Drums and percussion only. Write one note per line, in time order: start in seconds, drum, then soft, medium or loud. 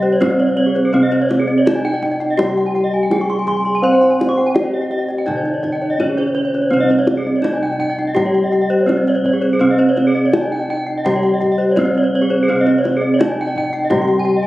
0.22 kendang slap soft
0.22 kendang high medium
0.22 kendang low medium
0.40 kendang slap soft
0.76 kendang slap soft
1.12 kendang slap soft
1.31 kendang slap soft
1.31 kendang high medium
1.67 kendang slap soft
1.67 kendang high medium
2.03 kendang low soft
2.21 kendang slap soft
2.39 kendang high soft
2.39 kendang low medium
2.58 kendang slap soft
2.76 kendang slap soft
3.11 kendang slap soft
3.11 kendang high soft
3.29 kendang slap soft
3.47 kendang low soft
3.66 kendang slap soft
4.03 kendang slap soft
4.21 kendang slap soft
4.21 kendang high soft
4.56 kendang slap soft
4.56 kendang high medium
4.92 kendang slap soft
5.10 kendang slap soft
5.28 kendang low medium
5.45 kendang slap soft
5.64 kendang slap soft
5.64 kendang low medium
6.00 kendang slap soft
6.00 kendang high soft
6.00 kendang low soft
6.18 kendang slap soft
6.54 kendang slap soft
6.90 kendang slap soft
7.07 kendang slap soft
7.07 kendang high soft
7.44 kendang slap soft
7.44 kendang high medium
7.81 kendang low soft
7.99 kendang slap soft
8.16 kendang high medium
8.16 kendang low medium
8.34 kendang slap soft
8.53 kendang slap soft
8.89 kendang slap soft
8.89 kendang high soft
9.07 kendang slap soft
9.24 kendang low soft
9.42 kendang slap soft
9.79 kendang slap soft
9.97 kendang slap soft
9.97 kendang high soft
10.33 kendang slap soft
10.33 kendang high medium
10.87 kendang slap soft
11.06 kendang low medium
11.23 kendang slap soft
11.42 kendang slap soft
11.42 kendang low soft
11.77 kendang slap soft
11.77 kendang high medium
11.77 kendang low soft
11.95 kendang slap soft
12.30 kendang slap soft
12.67 kendang slap soft
12.85 kendang slap soft
12.85 kendang high soft
13.21 kendang slap soft
13.21 kendang high medium
13.56 kendang low soft
13.74 kendang slap soft
13.91 kendang high soft
13.91 kendang low medium
14.08 kendang slap soft
14.26 kendang slap soft